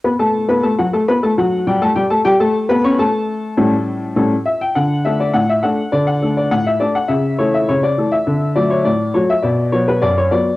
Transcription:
X:1
M:2/4
L:1/16
Q:1/4=102
K:D
V:1 name="Upright piano"
[B,Bb] [A,Aa]2 [B,Bb] [A,Aa] [F,Ff] [A,Aa] [B,Bb] | [A,Aa] [F,Ff]2 [G,Gg] [A,Aa] [G,Gg] [A,Aa] [G,Gg] | [A,Aa]2 [B,Bb] [Ccc'] [A,Aa]4- | [A,Aa]6 e g |
f2 e d f e f2 | d f2 d f e d f | e2 c e c d2 e- | e2 d c d2 c e |
d2 c B d c d2 |]
V:2 name="Upright piano"
z8 | z8 | z8 | [A,,G,CA]2 z2 [A,,G,CA]2 z2 |
D,2 [A,DA]2 A,,2 [A,DA]2 | D,2 [A,DA]2 A,,2 [A,DA]2 | C,2 [E,A,A]2 C,2 [E,A,A]2 | D,2 [F,A,F]2 A,,2 [F,A,F]2 |
B,,2 [F,B,F]2 F,,2 [F,B,F]2 |]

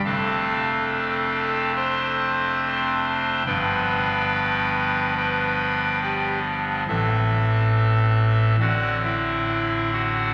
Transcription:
X:1
M:4/4
L:1/8
Q:1/4=70
K:Ddor
V:1 name="Pipe organ"
[Afa]4 [cac']4 | [Bgb]4 [Bgb]2 [Gdg] z | [Aea]4 [^Fd^f] [Ee]2 [Ff] |]
V:2 name="Pipe organ" clef=bass
[F,,,F,,A,CD]8 | [G,,,G,,F,B,D]8 | [A,,,A,,E,C]4 [A,,,A,,D,CD]4 |]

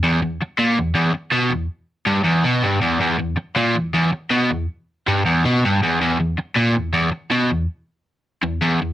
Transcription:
X:1
M:4/4
L:1/8
Q:1/4=161
K:Em
V:1 name="Overdriven electric guitar" clef=bass
E,, E,, z ^A,, E,, E,, z B,, | E,, z2 G,, E,, B,, G,, E,, | E,, E,, z ^A,, E,, E,, z B,, | E,, z2 G,, E,, B,, G,, E,, |
E,, E,, z ^A,, E,, E,, z B,, | E,, z4 E,, E,, E,, |]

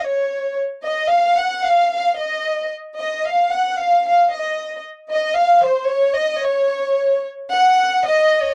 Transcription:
X:1
M:2/4
L:1/16
Q:1/4=112
K:Ebdor
V:1 name="Violin section"
d4 z2 e2 | f2 g2 f2 f2 | e4 z2 e2 | f2 g2 f2 f2 |
e4 z2 e2 | f2 c2 d2 e2 | d6 z2 | [K:D#m] f4 d3 c |]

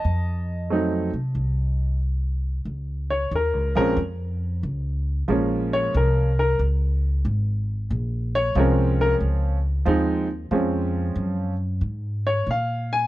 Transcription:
X:1
M:4/4
L:1/8
Q:"Swing" 1/4=92
K:Bbm
V:1 name="Grand piano"
[e=a]6 z2 | z d B B z4 | z d B B z4 | z d B B z4 |
z4 z d f a |]
V:2 name="Grand piano"
z2 [G,=A,CE] z4 z | z3 [F,A,CD] z4 | [F,A,B,D]3 z4 z | z2 [F,A,CD]3 z [F,A,CE] z |
[F,A,CD]3 z4 z |]
V:3 name="Upright bass" clef=bass
F,,3 C, C,,4 | D,,2 (3E,, D,, B,,, F,,2 D,,2 | B,,,2 C,,2 D,,2 A,,,2 | B,,,2 C,,2 D,,2 E,,2 |
F,,2 G,,2 A,,2 B,,2 |]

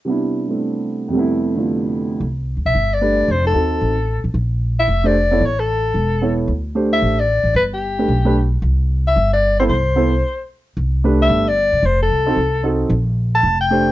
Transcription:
X:1
M:4/4
L:1/8
Q:"Swing" 1/4=224
K:C
V:1 name="Soprano saxophone"
z8 | z8 | z3 e2 d3 | c A6 z |
z3 e2 d3 | ^c A6 z | z3 e2 d3 | B G6 z |
z3 e2 d2 c | c6 z2 | z3 e2 d3 | c A6 z |
z3 a2 g3 |]
V:2 name="Grand piano"
[C,G,B,DE]3 [G,A,CD]4- [G,A,CD] | [F,,C,G,A,B,E]3 [D,A,B,F]4- [D,A,B,F] | z6 [A,DGB]2 | z2 [C_E_GA]3 z3 |
z4 z [A,DGc] z [B,EA_d] | z6 [B,EA^c]2 | z2 [A,DGc]3 z3 | z3 [A,DGB] z [A,DGB] z2 |
z6 z [B,EAc] | z2 [B,EAc] z4 z | z2 [A,DGB]3 z3 | z3 [C_E_GA] z2 [CEGA]2 |
z6 [A,DGc]2 |]
V:3 name="Upright bass" clef=bass
z8 | z8 | C,,2- (3C,, D,, B,,, G,,,4 | F,,,2 _E,,2 A,,,3 A,,, |
_B,,,4 F,,,4 | A,,,4 E,,,4 | D,,4 A,,,3 A,,, | G,,,4 B,,,4 |
C,,4 G,,,4 | C,,4 z4 | C,,4 G,,,3 C,, | F,,,2 C,,2 C,,4 |
_B,,,4 F,,,4 |]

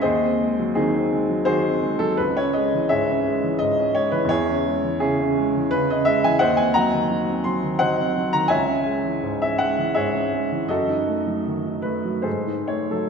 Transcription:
X:1
M:3/4
L:1/16
Q:1/4=84
K:C#m
V:1 name="Grand piano"
[G^Bd]4 [^B,DG]4 [FGB]3 A | B c d2 [Gce]4 d2 c B | [EGc]4 [CEG]4 B d e g | [=c_e_g] ^g [e_g^a]4 =c'2 [ceg]3 a |
[ceg]4- [ceg] e f2 [Gce]2 z2 | [FAd]6 B2 [GA^B]2 c A |]
V:2 name="Grand piano" clef=bass
D,, ^B, G, F, D, B, G, F, D, B, G, F, | C,, C G, E, G,, C G, E, G,, C G, E, | E,, C G, E, C, C G, E, C, C G, E, | _E,, =C _G, _E, G, C G, E, G, C G, E, |
C,, C G, E, G,, C G, E, G,, C G, E, | F,, D A, F, D, D A, F, G,, D A, F, |]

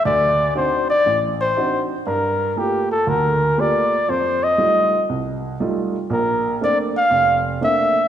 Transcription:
X:1
M:4/4
L:1/8
Q:"Swing" 1/4=119
K:F
V:1 name="Flugelhorn"
d2 c d2 c2 z | B2 G A B2 d2 | c _e3 z4 | B2 d f2 z e2 |]
V:2 name="Upright piano"
D,,2 [CD_E^F] z A,,,2 [CDEF] z | G,,2 [A,B,FG] z [D,,D,]2 [A,B,FG] z | F,,2 [G,A,_EF] z C,,2 [G,A,EF] z | B,,,2 [A,B,CD] z F,,,2 [A,B,CD] z |]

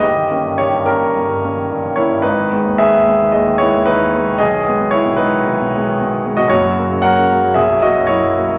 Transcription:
X:1
M:4/4
L:1/16
Q:1/4=112
K:D#phr
V:1 name="Grand piano"
[=Gd]4 [Gc]2 [CA]8 [Ec]2 | [DB]4 [Ge]4 [Gd]2 [Ec]2 [DB]4 | [Gd]4 [Ec]2 [DB]8- [DB] [Fd] | [Fc]4 [Af]4 [Ge]2 [Fd]2 [Ec]4 |]
V:2 name="Grand piano" clef=bass
=G,,, D, [A,C] =G,, D, G,, A, D, G,,, G,, [A,C] D, G,, D, [A,C] G,, | G,,, D, [G,B,] D,, D, D,, [G,B,] D, D,, D, [G,B,] D,, D, D,, [G,B,] D, | B,,, D, [G,B,] B,, D, B,, [G,B,] D, B,,, B,, [G,B,] D, B,, D, [G,B,] B,, | [F,,,F,,] F, [F,A,] C, F, C, [F,A,] F, B,,, F, [F,A,] F,, F, F,, [F,A,] F, |]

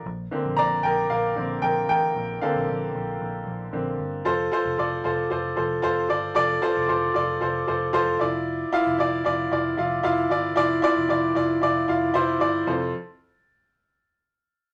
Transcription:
X:1
M:4/4
L:1/16
Q:1/4=114
K:F
V:1 name="Upright piano"
z4 [db]2 [Bg]2 [Bf]4 [Bg]2 [Bg]2- | [Bg]2 [Af]12 z2 | [FAc]2 [FAc]2 [FAd]2 [FAc]2 [FAc]2 [FAc]2 [FAc]2 [FAd]2 | [FAd]2 [FAc]2 [FAc]2 [FAd]2 [FAc]2 [FAc]2 [FAc]2 [EFd]2- |
[EFd]2 [EFf]2 [EFd]2 [EFd]2 [EFd]2 [EFf]2 [EFf]2 [EFd]2 | [EFd]2 [EFd]2 [EFd]2 [EFd]2 [EFd]2 [EFf]2 [EFc]2 [EFd]2 | [FAc]2 z12 z2 |]
V:2 name="Upright piano"
z2 [D,B,C]2 z6 [D,B,C]2 z4 | z2 [D,B,C]6 z4 [D,B,C]2 z2 | z16 | z16 |
z16 | z16 | F,,2 z12 z2 |]
V:3 name="Picked electric bass" clef=bass
B,,,2 z B,,, B,,,2 B,,,2 B,,,2 B,,,2 B,,,2 A,,,2 | B,,,2 z B,,, B,,,2 B,,,2 B,,,2 B,,,2 B,,,2 G,,,2 | F,,,2 z F,,, F,,,2 F,,,2 F,,,2 F,,,2 F,,,2 G,,,2 | F,,,2 z F,,, F,,,2 F,,,2 F,,,2 F,,,2 F,,,2 F,,,2- |
F,,,2 z F,,, F,,,2 F,,,2 F,,,2 F,,,2 F,,,2 G,,,2 | F,,,2 z F,,, F,,,2 F,,,2 F,,,2 F,,,2 F,,,2 G,,,2 | F,,,2 z12 z2 |]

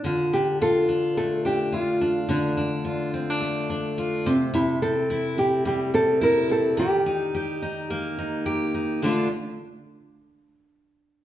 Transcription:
X:1
M:4/4
L:1/16
Q:"Swing 16ths" 1/4=107
K:Dm
V:1 name="Nylon-string guitar"
F2 G2 A4 A2 G2 F4 | D12- D2 C2 | E2 A4 G2 G2 A2 B2 A2 | G12- G2 z2 |
D2 z12 z2 |]
V:2 name="Steel-string acoustic guitar"
D,2 D2 F2 D2 A,2 D2 F2 D2 | D,2 D2 F2 C D A,2 D2 F2 C,2 | C,2 C2 E2 C2 G,2 C2 E2 C2 | _E,2 _E2 G2 E2 B,2 E2 G2 E2 |
[D,A,DF]2 z12 z2 |]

